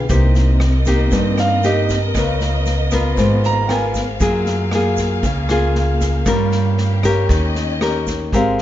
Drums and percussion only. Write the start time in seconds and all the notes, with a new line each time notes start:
0.09 kick, snare, shaker
0.35 snare, shaker
0.60 cross-stick, snare
0.86 kick, snare, shaker
1.12 kick, snare, shaker
1.38 cross-stick, snare, shaker
1.63 snare, shaker
1.89 kick, snare, shaker
2.15 kick, cross-stick, snare, shaker
2.41 snare, shaker
2.66 snare, shaker
2.91 kick, cross-stick, snare, shaker
3.17 kick, snare, shaker
3.44 snare, shaker
3.69 cross-stick, snare
3.94 kick, snare, shaker
4.20 kick, snare, shaker
4.46 snare, shaker
4.71 cross-stick, snare
4.97 kick, snare, shaker
5.23 kick, snare, shaker
5.49 cross-stick, snare, shaker
5.75 snare
6.00 kick, snare, shaker
6.26 kick, cross-stick, snare, shaker
6.51 snare, shaker
6.78 snare
7.03 kick, cross-stick, snare, shaker
7.29 kick, snare, shaker
7.55 snare, shaker
7.81 cross-stick, snare
8.07 kick, snare, shaker
8.32 kick, snare, shaker
8.58 snare